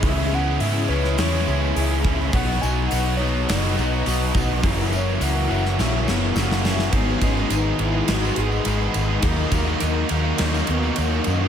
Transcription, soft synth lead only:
\new Staff \with { instrumentName = "Soft synth lead" } { \time 4/4 \key gis \minor \tempo 4 = 104 e''8 fis''8 e''8 b'8 cis''4 r4 | fis''8 gis''8 fis''8 cis''8 dis''4 r4 | r8 cis''8 fis''4 e''8 b8 ais8 cis'8 | b8 cis'8 dis'8 e'8 fis'8 gis'4 r8 |
r2 r8 b8 ais8 cis'8 | }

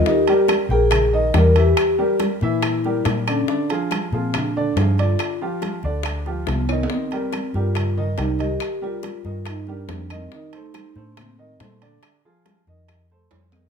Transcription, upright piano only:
\new Staff \with { instrumentName = "Upright piano" } { \time 4/4 \key c \minor \tempo 4 = 140 <ees ees' ees''>8 <g g' bes'>4 <bes bes' g''>4 <ees ees' ees''>8 <g g' bes'>8 <e e' e''>8~ | <e e' e''>8 <g g' bes'>4 <e e' e''>4 <g g' bes'>4 <d d' d''>8 | <d d' d''>8 <f f' aes'>4 <f f' aes'>4 <d d' d''>8 <f f' aes'>8 <d d' d''>8~ | <d d' d''>8 <f f' g'>4 <d d' d''>4 <f f' g'>4 <ees ees' ees''>8 |
<ees ees' ees''>8 <g g' bes'>4 <g g' bes'>4 <ees ees' ees''>8 <g g' bes'>8 <ees ees' ees''>8~ | <ees ees' ees''>8 <g g' bes'>4 <ees ees' ees''>4 <g g' bes'>4 <ees ees' ees''>8 | <ees ees' ees''>8 <a a' c''>4 <a a' c''>4 <ees ees' ees''>8 <a a' c''>8 <d d' d''>8~ | <d d' d''>8 <f f' aes'>4 <ees ees' ees''>4 <a a' c''>4 <ees ees' ees''>8 | }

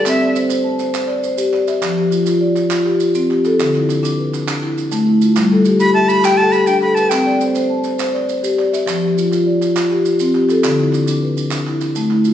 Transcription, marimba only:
\new Staff \with { instrumentName = "Marimba" } { \time 12/8 \key c \major \tempo 4. = 136 << { <a' b'>8 d''8 c''4 a''8 c''4 d''8 c''4 d''8 e''8~ | e''8 g'8 f'4 d''4. g'8 f'4 g'8 a'8~ | a'8 e'8 d'4 b'8 d'4 e'8 d'4 e'8 f'8~ | f'8 a'8 g'4 e''8 g'4 a'8 g'4 a'4~ |
a'8 d''8 c''4 a''8 c''4 d''8 c''4 d''8 e''8~ | e''8 g'8 f'4 d''8 f'4 g'8 f'4 g'8 a'8~ | a'8 e'8 d'4 b'8 d'4 e'8 d'4 e'8 f'8 | } \\ { c'4 r8 c''4 r8 c''4 r8 g'4 r8 | f4 r8 f'4 r8 f'4 r8 c'4 r8 | d4 r8 d'4 r8 d'4 r8 a4 r8 | g4 r8 g'4 r8 g'4 r8 d'4 r8 |
c'4 r8 c''4 r8 c''4 r8 g'4 r8 | f4 r8 f'4 r8 f'4 r8 c'4 r8 | d4 r8 d'4 r8 d'4 r8 a4 r8 | } >> }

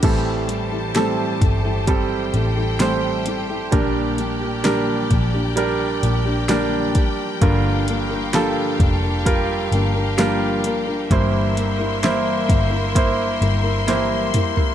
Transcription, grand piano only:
<<
  \new Staff \with { instrumentName = "Grand piano" } { \time 4/4 \key a \phrygian \tempo 4 = 65 <g c' a'>4 <g c' a'>4 <g c' a'>4 <g c' c''>4 | <g d' bes'>4 <g d' bes'>4 <g d' bes'>4 <g d' bes'>4 | <g f' bes'>4 <g f' a'>4 <g f' bes'>4 <g f' bes'>4 | <bes e' c''>4 <bes e' c''>4 <bes e' c''>4 <bes e' c''>4 | }
  \new Staff \with { instrumentName = "Grand piano" } { \clef bass \time 4/4 \key a \phrygian <a, e>4. r2 r8 | bes,4. r2 r8 | <g, d>4. r2 r8 | <g, g>4. r2 r8 | }
>>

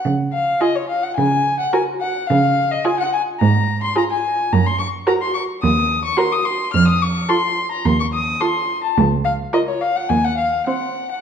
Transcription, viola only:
\new Staff \with { instrumentName = "Viola" } { \time 4/4 \key des \major \tempo 4 = 108 r4 f'4 r4 ges'4 | r4 f'4 r4 f'4 | \key f \phrygian r4 ges'4 r4 ges'4 | r4 f'4 r4 f'4 |
r4 f'4 r4 c'4 | }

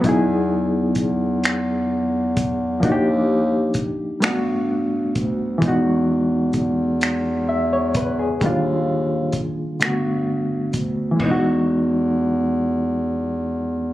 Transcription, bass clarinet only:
\new Staff \with { instrumentName = "Bass clarinet" } { \clef bass \time 6/8 \key e \major \tempo 4. = 43 e,4 e,2 | dis,4 r8 g,4 d,8 | e,4 e,2 | dis,4 r8 g,4 d,8 |
e,2. | }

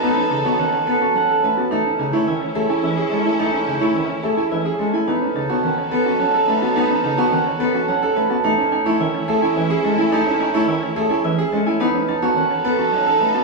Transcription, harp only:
\new Staff \with { instrumentName = "Harp" } { \time 3/4 \key a \lydian \tempo 4 = 107 <a' b' cis'' fis'' a''>8 a''16 cis''16 fis''8 a'16 a''16 fis''8 b'16 a''16 | a'8 gis''16 cis''16 e''8 gis'16 gis''16 e''8 a'16 gis''16 | a'8 gis''16 cis''16 e''8 gis'16 gis''16 e''8 a'16 gis''16 | b'8 a''16 cis''16 fis''8 a'16 a''16 fis''8 b'16 a''16 |
b'8 a''16 cis''16 fis''8 a'16 a''16 fis''8 b'16 a''16 | a'8 gis''16 cis''16 e''8 gis'16 gis''16 e''8 a'16 gis''16 | a'8 gis''16 cis''16 e''8 gis'16 gis''16 e''8 a'16 gis''16 | b'8 a''16 cis''16 fis''8 a'16 a''16 fis''8 b'16 a''16 | }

